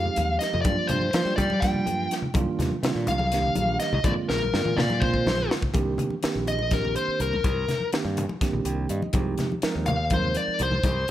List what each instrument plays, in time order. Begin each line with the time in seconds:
Already playing: tine electric piano F3 G#3 C4 D#4 G4, lead electric guitar F5
0.06 low conga
0.16 fingered electric bass D#2, closed hi-hat, high conga, low conga
0.39 lead electric guitar D#5, snare, closed hi-hat
0.53 fingered electric bass F2, low conga
0.61 fingered electric bass G2, lead electric guitar D5, kick, closed hi-hat
0.66 tine electric piano F3 G3 A#3 D4 F4, muted conga, high conga
0.87 fingered electric bass G2, lead electric guitar C5, closed hi-hat, low conga
1.01 high conga
1.13 fingered electric bass F3, tine electric piano F3 G3 A#3 D4 F4, snare, closed hi-hat
1.25 fingered electric bass G3
1.36 fingered electric bass G3, lead electric guitar D5, kick, closed hi-hat, low conga
1.50 muted conga, high conga
1.60 tine electric piano F3 G3, lead electric guitar G5, kick, snare, closed hi-hat
1.64 tine electric piano A#3 D4 F4
1.74 low conga
1.86 fingered electric bass G2, closed hi-hat, high conga, low conga
2.11 snare, closed hi-hat
2.22 low conga
2.34 fingered electric bass C2, tine electric piano D#3 G3 A#3 D4 F4, kick, closed hi-hat, muted conga, high conga
2.59 fingered electric bass D#2, snare, closed hi-hat, low conga
2.72 high conga
2.83 fingered electric bass C3, tine electric piano D#3 G3 A#3 D4 F4, snare, closed hi-hat
2.95 fingered electric bass A#2
3.07 fingered electric bass C2, lead electric guitar F5, closed hi-hat, low conga
3.19 muted conga, high conga
3.32 tine electric piano D#3 G3 A#3 D4 G4, snare, closed hi-hat
3.43 low conga
3.55 fingered electric bass A#1, closed hi-hat, high conga, low conga
3.80 lead electric guitar D#5, snare, closed hi-hat
3.93 fingered electric bass C2, low conga
4.04 fingered electric bass A#1, tine electric piano D3 G#3 A#3 C4 F4, lead electric guitar D5, kick, closed hi-hat, muted conga, high conga, low conga
4.29 fingered electric bass A#1, lead electric guitar A#4, snare, low conga
4.42 high conga, low conga
4.54 fingered electric bass G2, tine electric piano D3 G#3 A#3 C4 F4, snare, low conga
4.65 fingered electric bass A#2, mid tom
4.77 fingered electric bass A#2, lead electric guitar D5, snare, low conga
4.90 muted conga, high conga
5.00 tine electric piano D3 G#3 A#3 C4 F4, lead electric guitar C5, kick, mid tom
5.14 kick, low conga
5.26 fingered electric bass A#1, snare, high conga, low conga
5.39 low conga
5.51 snare, low conga
5.62 kick, low conga
5.74 fingered electric bass C2, tine electric piano D#3 A#3 C4 D4 G4, kick, closed hi-hat, muted conga, low conga
5.98 closed hi-hat, low conga
6.10 high conga
6.23 tine electric piano D#3 A#3 C4 D4 G4, muted fingered electric bass stroke, snare, closed hi-hat
6.35 fingered electric bass A#1
6.47 lead electric guitar D#5, closed hi-hat
6.59 muted conga, low conga
6.71 tine electric piano D#3 A#3 C4 D4 G4, lead electric guitar A#4, kick, snare, closed hi-hat, high conga, low conga
6.85 low conga
6.96 lead electric guitar C5, closed hi-hat
7.08 muted fingered electric bass stroke
7.20 fingered electric bass C2, lead electric guitar A#4, closed hi-hat
7.34 high conga, low conga
7.44 fingered electric bass C2, kick, closed hi-hat, muted conga, low conga
7.68 snare, closed hi-hat, low conga
7.80 high conga
7.93 tine electric piano D#3 A#3 C4 D4 G4, snare, closed hi-hat
8.05 fingered electric bass G2
8.17 closed hi-hat, low conga
8.29 muted conga, low conga
8.41 tine electric piano D#3 A#3 C4 D4 G4, kick, snare, closed hi-hat, high conga, low conga
8.53 fingered electric bass A#1, low conga
8.65 fingered electric bass C2, tine electric piano G5, closed hi-hat
8.89 fingered electric bass G2, tine electric piano D#5, closed hi-hat
9.02 muted fingered electric bass stroke, high conga
9.13 fingered electric bass C2, tine electric piano F3 G#3 C4 D#4 G4, kick, closed hi-hat, muted conga, low conga
9.38 snare, closed hi-hat, low conga
9.52 high conga
9.62 tine electric piano F3 G#3 C4 D#4 A#4, muted fingered electric bass stroke, snare, closed hi-hat
9.75 fingered electric bass D#2
9.86 lead electric guitar F5, closed hi-hat, low conga
10.00 low conga
10.10 tine electric piano F3 G#3 C4 D#4 A#4, lead electric guitar C5, kick, closed hi-hat, high conga, low conga
10.25 low conga
10.35 lead electric guitar D5, closed hi-hat
10.48 muted fingered electric bass stroke
10.59 fingered electric bass C2, lead electric guitar C5, closed hi-hat
10.71 high conga, low conga
10.83 fingered electric bass C2, kick, closed hi-hat, muted conga, low conga